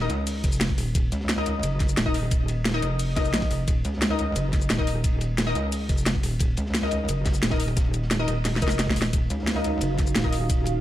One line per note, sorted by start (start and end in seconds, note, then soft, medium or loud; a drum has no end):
0.01 0.11 D#4 loud
0.01 0.11 A#4 medium
0.01 0.11 D#5 loud
0.01 snare soft
0.09 0.42 C#2 loud
0.09 closed hi-hat medium
0.09 ride medium
0.09 shaker soft
0.27 closed hi-hat loud
0.27 open hi-hat medium
0.27 shaker medium
0.44 0.77 F1 loud
0.44 kick loud
0.44 closed hi-hat medium
0.44 ride medium
0.44 shaker soft
0.52 shaker medium
0.60 snare loud
0.60 closed hi-hat loud
0.60 ride loud
0.60 shaker soft
0.69 kick medium
0.78 0.94 D#1 loud
0.78 open hi-hat medium
0.78 ride medium
0.95 1.11 D#1 loud
0.95 kick loud
0.95 closed hi-hat medium
0.95 ride medium
0.95 shaker soft
1.12 1.62 C#2 loud
1.12 closed hi-hat medium
1.12 ride medium
1.12 shaker soft
1.21 snare medium
1.29 snare loud
1.29 closed hi-hat loud
1.29 ride medium
1.29 shaker soft
1.37 2.04 D#4 medium
1.37 2.04 A#4 medium
1.37 2.04 D#5 loud
1.37 snare soft
1.46 closed hi-hat medium
1.46 ride medium
1.46 shaker soft
1.63 1.96 F#1 loud
1.63 closed hi-hat loud
1.63 ride loud
1.63 shaker soft
1.79 kick loud
1.79 snare soft
1.79 closed hi-hat medium
1.79 ride medium
1.79 shaker soft
1.89 shaker medium
1.97 2.81 D#1 loud
1.97 snare loud
1.97 closed hi-hat loud
1.97 ride medium
1.97 shaker soft
2.06 2.15 D#4 medium
2.06 2.15 A#4 medium
2.06 2.15 D#5 medium
2.06 kick medium
2.14 open hi-hat medium
2.14 ride medium
2.31 kick loud
2.31 closed hi-hat medium
2.31 ride medium
2.31 shaker soft
2.48 closed hi-hat medium
2.48 ride medium
2.48 shaker soft
2.65 snare loud
2.65 closed hi-hat medium
2.65 ride medium
2.65 shaker soft
2.74 2.84 D#4 loud
2.74 2.84 A#4 medium
2.74 2.84 D#5 loud
2.74 snare soft
2.82 3.32 F1 loud
2.82 closed hi-hat medium
2.82 ride medium
2.82 shaker soft
2.99 closed hi-hat medium
2.99 open hi-hat medium
2.99 shaker soft
3.16 3.49 D#4 medium
3.16 3.49 A#4 medium
3.16 3.49 D#5 medium
3.16 kick loud
3.16 snare loud
3.16 snare soft
3.16 closed hi-hat medium
3.16 ride medium
3.16 shaker soft
3.25 shaker medium
3.34 3.49 A#1 loud
3.34 snare loud
3.34 closed hi-hat medium
3.34 ride medium
3.34 shaker soft
3.41 kick medium
3.41 snare loud
3.41 ride medium
3.51 3.66 F1 loud
3.51 open hi-hat medium
3.51 ride medium
3.68 3.83 D#1 loud
3.68 kick loud
3.68 closed hi-hat medium
3.68 ride medium
3.68 shaker soft
3.85 4.35 C#2 medium
3.85 closed hi-hat medium
3.85 ride medium
3.85 shaker soft
3.93 snare soft
4.02 snare loud
4.02 closed hi-hat medium
4.02 ride medium
4.02 shaker soft
4.10 4.77 D#4 medium
4.10 4.76 A#4 medium
4.10 4.76 D#5 loud
4.10 snare soft
4.19 closed hi-hat medium
4.19 ride medium
4.19 shaker soft
4.36 4.69 F#1 loud
4.36 closed hi-hat medium
4.36 ride medium
4.36 shaker soft
4.53 kick loud
4.53 snare soft
4.53 closed hi-hat medium
4.53 ride medium
4.53 shaker soft
4.61 shaker medium
4.70 5.54 D#1 medium
4.70 snare loud
4.70 closed hi-hat medium
4.70 ride medium
4.70 shaker soft
4.78 4.88 D#4 medium
4.78 4.88 A#4 medium
4.78 4.88 D#5 medium
4.78 kick medium
4.87 open hi-hat medium
4.87 ride medium
5.04 kick loud
5.04 closed hi-hat medium
5.04 ride medium
5.04 shaker soft
5.21 closed hi-hat medium
5.21 ride medium
5.21 shaker soft
5.38 snare loud
5.38 closed hi-hat medium
5.38 ride medium
5.38 shaker soft
5.47 5.56 D#4 loud
5.47 5.56 A#4 medium
5.47 5.56 D#5 loud
5.47 snare soft
5.55 5.88 C#2 loud
5.55 closed hi-hat medium
5.55 ride medium
5.55 shaker soft
5.72 closed hi-hat medium
5.72 open hi-hat medium
5.72 shaker soft
5.89 6.22 F1 loud
5.89 kick loud
5.89 closed hi-hat medium
5.89 ride medium
5.89 shaker soft
5.98 shaker medium
6.06 snare loud
6.06 closed hi-hat medium
6.06 ride loud
6.06 shaker soft
6.15 kick medium
6.23 6.39 D#1 loud
6.23 open hi-hat medium
6.23 ride medium
6.39 6.56 D#1 loud
6.39 kick loud
6.39 closed hi-hat medium
6.39 ride medium
6.39 shaker medium
6.57 7.07 C#2 loud
6.57 closed hi-hat medium
6.57 ride medium
6.57 shaker soft
6.66 snare soft
6.74 snare loud
6.74 closed hi-hat medium
6.74 ride medium
6.74 shaker medium
6.83 7.49 D#4 medium
6.83 7.49 A#4 medium
6.83 7.49 D#5 loud
6.83 snare soft
6.91 closed hi-hat medium
6.91 ride medium
6.91 shaker soft
7.09 7.41 F#1 loud
7.09 closed hi-hat medium
7.09 ride medium
7.09 shaker medium
7.25 kick loud
7.25 snare loud
7.25 snare soft
7.25 closed hi-hat medium
7.25 ride medium
7.25 shaker soft
7.34 shaker medium
7.43 8.27 D#1 loud
7.43 snare loud
7.43 closed hi-hat medium
7.43 ride medium
7.43 shaker medium
7.50 7.61 D#4 medium
7.50 7.61 A#4 medium
7.50 7.61 D#5 medium
7.50 kick medium
7.50 snare loud
7.50 ride medium
7.60 open hi-hat medium
7.68 ride medium
7.76 kick loud
7.76 snare loud
7.76 closed hi-hat medium
7.76 ride medium
7.76 shaker medium
7.94 closed hi-hat medium
7.94 ride medium
7.94 shaker soft
8.02 snare soft
8.10 snare loud
8.10 closed hi-hat loud
8.10 ride medium
8.10 shaker medium
8.19 8.29 D#4 loud
8.19 8.29 A#4 medium
8.19 8.29 D#5 loud
8.28 8.61 D#1 loud
8.28 closed hi-hat medium
8.28 ride medium
8.28 shaker soft
8.45 snare medium
8.45 closed hi-hat loud
8.45 open hi-hat medium
8.45 shaker medium
8.56 snare medium
8.62 8.95 F1 medium
8.62 8.94 D#4 medium
8.62 8.94 A#4 medium
8.62 8.94 D#5 loud
8.62 kick loud
8.62 closed hi-hat medium
8.62 ride medium
8.62 shaker soft
8.68 snare medium
8.68 shaker medium
8.79 snare loud
8.79 snare medium
8.79 closed hi-hat medium
8.79 ride medium
8.79 shaker medium
8.88 kick medium
8.88 snare loud
8.96 9.12 D#1 loud
8.96 open hi-hat medium
8.96 ride medium
9.02 snare loud
9.02 shaker soft
9.13 9.29 D#1 loud
9.13 10.81 D#4 medium
9.13 10.81 F#4 medium
9.13 10.81 F5 medium
9.13 kick loud
9.13 closed hi-hat medium
9.13 ride loud
9.13 shaker medium
9.30 9.80 C#2 loud
9.30 closed hi-hat medium
9.30 ride medium
9.30 shaker soft
9.39 snare soft
9.47 snare loud
9.47 closed hi-hat loud
9.47 ride medium
9.47 shaker soft
9.56 10.22 D#4 medium
9.56 10.22 A#4 medium
9.56 10.22 D#5 medium
9.56 snare soft
9.64 closed hi-hat medium
9.64 ride medium
9.64 shaker soft
9.81 10.14 F#1 loud
9.81 closed hi-hat loud
9.81 ride medium
9.81 shaker medium
9.98 kick loud
9.98 snare soft
9.98 closed hi-hat medium
9.98 ride medium
9.98 shaker soft
10.07 shaker medium
10.15 10.81 D#1 loud
10.15 snare loud
10.15 closed hi-hat loud
10.15 ride medium
10.15 shaker medium
10.24 10.34 D#4 medium
10.24 10.34 A#4 medium
10.24 10.34 D#5 medium
10.24 kick medium
10.33 open hi-hat medium
10.33 ride medium
10.49 kick loud
10.49 closed hi-hat loud
10.49 ride medium
10.49 shaker soft
10.65 closed hi-hat medium
10.65 ride medium
10.65 shaker soft